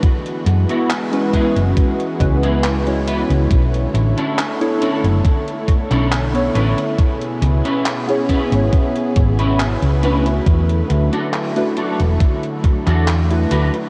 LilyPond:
<<
  \new Staff \with { instrumentName = "Clean electric guitar" } { \time 4/4 \key b \dorian \tempo 4 = 69 r8. <b e' fis'>16 r8 <b e' gis'>16 r4 <b e' gis'>16 r8 <b e' b'>16 r16 | r8. <cis' d' e' a'>16 r8 <cis' d' e' a'>16 r4 <cis' d' e' a'>16 r8 <cis' d' e' b'>16 r16 | r8. <cis' e' b'>16 r8 <cis' e' b'>16 r4 <cis' e' b'>16 r8 <cis' e' b'>16 r16 | r8. <d' fis' a'>16 r8 <d' fis' a'>16 r4 <d' fis' a'>16 r8 <d' fis' b'>16 r16 | }
  \new Staff \with { instrumentName = "Synth keys" } { \time 4/4 \key b \dorian r4 r16 <gis cis' e' fis' b'>4~ <gis cis' e' fis' b'>16 <gis cis' e' fis' b'>8. <gis cis' e' fis' cis''>8. | r4 r16 <b d' e' a' cis''>16 r4. r16 <d b e' a' cis''>8. | r4 r16 <b cis' e' gis' cis''>2~ <b cis' e' gis' cis''>16 <a d' e' fis' b'>8~ | <a d' e' fis' b'>4~ <a d' e' fis' b'>16 <a d' e' fis' b'>16 r4. r16 <a d' e' fis' b'>8. | }
  \new Staff \with { instrumentName = "Analog synth pad" } { \time 4/4 \key b \dorian << { fis'1 | e'1~ | e'1~ | e'1 | } \\ { <e gis b>1 | <d a cis''>1 | <b, b gis'>1 | <d fis a>1 | } >> }
  \new Staff \with { instrumentName = "Fingered electric bass" } { \clef bass \time 4/4 \key b \dorian r8 fis,16 r4 fis,,16 r8 cis,4~ cis,16 cis,16 | b,,8 a,,16 r4 fis,,16 r8. b,,8. a,,16 r16 | r8 cis,16 r4 gis,,16 r8 gis,,8. cis,8. | e,8 d,16 r4 e,,16 r8. e,8. d,16 r16 | }
  \new DrumStaff \with { instrumentName = "Drums" } \drummode { \time 4/4 <hh bd>16 hh16 hh16 hh16 <hc hh>16 hh16 <hh bd>16 hh16 <hh bd>16 hh16 <hh bd>16 hh16 <hc hh>16 hh16 hh16 hh16 | <hh bd>16 hh16 hh16 hh16 <hc hh>16 hh16 hh16 hh16 <hh bd>16 hh16 <hh bd>16 <hc hh>16 <hc hh>16 hh16 hh16 hh16 | <hh bd>16 hh16 hh16 hh16 <hc hh>16 hh16 <hh bd>16 hh16 <hh bd>16 hh16 <hh bd>16 hh16 <hc hh>16 hh16 hh16 hh16 | <hh bd>16 hh16 hh16 hh16 <hc hh>16 hh16 hh16 hh16 <hh bd>16 hh16 <hh bd>16 <hc hh>16 <hc hh>16 hh16 hh16 hh16 | }
>>